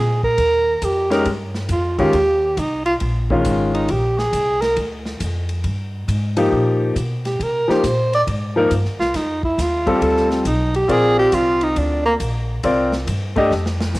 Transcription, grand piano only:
1.10 1.24 G#3 medium
1.10 1.25 C#4 medium
1.10 1.25 G4 medium
1.10 1.25 A#4 medium
1.98 2.12 D#3 medium
1.98 2.12 G#3 medium
1.98 2.13 C#4 medium
1.98 2.13 F4 medium
3.30 3.86 D#3 medium
3.30 3.86 G#3 medium
3.30 3.87 C#4 medium
3.30 3.87 F4 medium
6.37 6.93 F3 medium
6.37 6.93 A#3 medium
6.37 6.93 D#4 medium
6.37 6.93 G4 medium
7.68 7.82 F3 medium
7.68 7.82 A#3 medium
7.68 7.82 D#4 medium
7.68 7.83 G4 medium
8.56 8.69 F3 medium
8.56 8.70 A#3 medium
8.56 8.70 D#4 medium
8.56 8.70 A#4 medium
9.86 10.42 G3 medium
9.86 10.43 C4 medium
9.86 10.43 F4 medium
9.86 10.43 A4 medium
10.88 12.11 C4 medium
10.88 12.11 F4 medium
10.88 12.12 A#4 medium
10.88 12.12 D5 medium
12.64 12.90 C4 medium
12.64 12.90 F4 medium
12.64 12.90 A#4 medium
12.64 12.91 D5 medium
13.36 13.50 A3 medium
13.36 13.50 D4 medium
13.36 13.50 G4 medium
13.36 13.51 D#5 medium

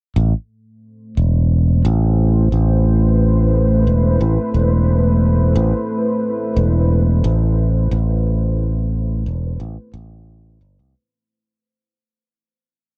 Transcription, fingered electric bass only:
0.16 0.32 A1 medium
1.17 1.82 E1 medium
1.85 2.49 A1 medium
2.52 3.84 A1 medium
3.87 4.17 E1 medium
4.21 4.37 A1 medium
4.54 5.52 E1 medium
5.55 5.72 A1 medium
6.57 7.21 E1 medium
7.24 7.88 A1 medium
7.91 9.23 A1 medium
9.26 9.56 E1 medium
9.60 9.76 A1 medium
9.94 10.58 A1 loud
10.61 10.77 G1 medium
10.79 10.93 C2 medium

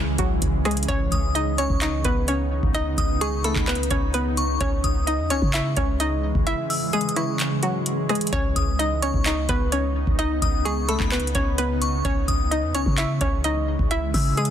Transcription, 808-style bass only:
0.00 0.17 C#2 loud
0.19 0.41 C#2 loud
0.42 0.87 C#2 loud
0.89 1.11 C#2 loud
1.12 1.68 C#2 loud
1.70 2.03 C#2 loud
2.05 2.61 C#2 loud
2.63 2.97 C#2 loud
2.98 3.54 C#2 loud
3.56 3.89 C#2 loud
3.91 4.58 C#2 loud
4.61 4.83 C#2 loud
4.84 5.20 C#2 loud
5.19 5.32 E2 loud
5.30 5.41 C#2 loud
5.42 5.75 C#3 loud
5.77 6.33 C#2 loud
6.35 6.46 C#2 loud
8.33 8.55 C#2 loud
8.56 9.12 C#2 loud
9.14 9.48 C#2 loud
9.49 10.05 C#2 loud
10.07 10.41 C#2 loud
10.42 10.98 C#2 loud
11.00 11.34 C#2 loud
11.35 12.02 C#2 loud
12.05 12.27 C#2 loud
12.28 12.64 C#2 loud
12.63 12.76 E2 loud
12.75 12.86 C#2 loud
12.86 13.20 C#3 loud
13.21 13.77 C#2 loud
13.79 14.13 C#2 loud
14.14 14.50 C#3 loud

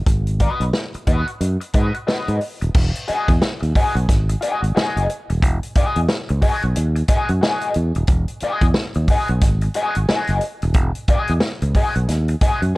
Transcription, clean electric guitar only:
0.40 0.63 F#4 loud
0.40 0.63 B4 medium
0.40 0.64 D#5 medium
0.95 muted clean electric guitar stroke soft
1.07 1.30 F#4 medium
1.07 1.26 B4 medium
1.07 1.26 D#5 medium
1.27 muted clean electric guitar stroke soft
1.41 muted clean electric guitar stroke soft
1.61 muted clean electric guitar stroke soft
1.74 1.97 F#4 medium
1.74 1.94 B4 medium
1.74 1.93 D#5 medium
1.95 muted clean electric guitar stroke medium
2.07 2.39 F#4 medium
2.07 2.39 B4 medium
2.07 2.39 D#5 medium
2.41 muted clean electric guitar stroke soft
2.61 muted clean electric guitar stroke soft
3.08 3.31 F#4 medium
3.08 3.31 G#4 medium
3.08 3.31 D#5 loud
3.61 muted clean electric guitar stroke soft
3.75 3.98 F#4 medium
3.75 3.95 G#4 loud
3.75 3.95 D#5 medium
3.96 muted clean electric guitar stroke soft
4.08 muted clean electric guitar stroke soft
4.29 muted clean electric guitar stroke soft
4.41 4.64 F#4 medium
4.41 4.61 G#4 medium
4.41 4.61 D#5 medium
4.62 muted clean electric guitar stroke soft
4.75 5.06 F#4 medium
4.75 5.07 G#4 medium
4.75 5.07 D#5 medium
5.09 muted clean electric guitar stroke soft
5.30 muted clean electric guitar stroke soft
5.76 5.99 F#4 medium
5.76 5.99 G#4 medium
5.76 5.99 D#5 medium
6.29 muted clean electric guitar stroke soft
6.42 6.65 F#4 loud
6.42 6.63 G#4 loud
6.42 6.62 D#5 medium
6.63 muted clean electric guitar stroke medium
6.76 muted clean electric guitar stroke medium
6.96 muted clean electric guitar stroke medium
7.09 7.32 F#4 medium
7.09 7.30 G#4 loud
7.09 7.29 D#5 loud
7.30 muted clean electric guitar stroke soft
7.41 7.73 F#4 medium
7.41 7.74 G#4 medium
7.41 7.74 D#5 medium
7.96 muted clean electric guitar stroke soft
8.43 8.65 F#4 medium
8.43 8.66 G#4 loud
8.43 8.66 D#5 loud
8.96 muted clean electric guitar stroke soft
9.10 9.32 F#4 medium
9.10 9.29 G#4 medium
9.10 9.28 D#5 medium
9.29 muted clean electric guitar stroke soft
9.43 muted clean electric guitar stroke medium
9.62 muted clean electric guitar stroke soft
9.75 9.98 F#4 medium
9.75 9.96 G#4 loud
9.75 9.95 D#5 loud
9.96 muted clean electric guitar stroke soft
10.09 10.40 F#4 medium
10.09 10.41 G#4 medium
10.09 10.41 D#5 medium
10.43 muted clean electric guitar stroke soft
10.63 muted clean electric guitar stroke soft
11.09 11.32 F#4 medium
11.09 11.32 G#4 medium
11.09 11.32 D#5 medium
11.62 muted clean electric guitar stroke soft
11.76 11.98 F#4 medium
11.76 11.95 G#4 medium
11.76 11.94 D#5 medium
11.95 muted clean electric guitar stroke soft
12.08 muted clean electric guitar stroke soft
12.29 muted clean electric guitar stroke soft
12.41 12.64 F#4 medium
12.41 12.61 G#4 loud
12.41 12.61 D#5 medium
12.62 muted clean electric guitar stroke soft

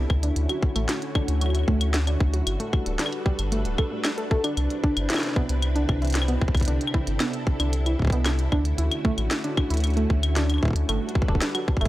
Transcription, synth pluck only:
0.23 0.36 D4 medium
0.49 0.62 F#4 medium
0.76 0.81 A3 loud
1.15 1.28 D4 medium
1.41 1.54 F#4 medium
1.68 1.73 A3 loud
2.07 2.20 D4 medium
2.33 2.46 F#4 medium
2.60 2.65 A3 loud
2.99 3.12 D4 medium
3.26 3.38 G4 medium
3.52 3.57 A3 loud
3.78 3.87 A4 medium
3.91 3.97 A3 medium
4.18 4.23 A4 medium
4.31 4.39 A4 loud
4.44 4.57 D4 medium
4.83 4.96 D4 medium
5.10 5.15 E4 medium
5.36 5.41 B3 loud
5.76 5.88 D4 medium
6.02 6.07 E4 medium
6.28 6.33 B3 loud
6.68 6.80 D4 medium
6.94 6.99 E4 medium
7.20 7.26 B3 loud
7.60 7.72 D4 medium
7.86 7.91 E4 medium
8.13 8.18 B3 loud
8.52 8.64 D4 medium
8.78 8.83 E4 medium
9.05 9.10 A3 loud
9.44 9.57 D4 medium
9.71 9.76 E4 medium
9.97 10.02 A3 loud
10.36 10.49 D4 medium
10.63 10.68 E4 medium
10.89 10.94 A3 loud
11.28 11.41 D4 medium
11.55 11.60 F#4 medium
11.81 11.86 A3 loud

